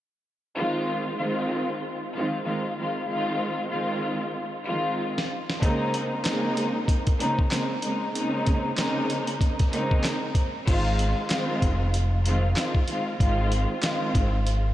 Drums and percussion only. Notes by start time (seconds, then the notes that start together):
5.18 snare
5.50 snare
5.62 kick, closed hi-hat
5.94 closed hi-hat
6.25 snare, clap, closed hi-hat
6.57 closed hi-hat
6.88 kick, closed hi-hat
7.07 kick, closed hi-hat
7.20 closed hi-hat
7.39 kick
7.51 snare, clap, closed hi-hat
7.82 closed hi-hat
8.15 closed hi-hat
8.46 kick, closed hi-hat
8.77 snare, clap, closed hi-hat
9.10 closed hi-hat
9.27 closed hi-hat
9.41 kick, closed hi-hat
9.59 kick, snare, closed hi-hat
9.73 closed hi-hat
9.91 kick
10.04 snare, clap, closed hi-hat
10.35 kick, closed hi-hat
10.67 kick, closed hi-hat, crash
10.99 closed hi-hat
11.30 snare, clap, closed hi-hat
11.62 kick, closed hi-hat
11.94 closed hi-hat
12.26 closed hi-hat
12.56 snare, clap, closed hi-hat
12.75 kick
12.88 closed hi-hat
13.20 kick, closed hi-hat
13.52 closed hi-hat
13.83 snare, clap, closed hi-hat
14.15 kick, closed hi-hat
14.47 closed hi-hat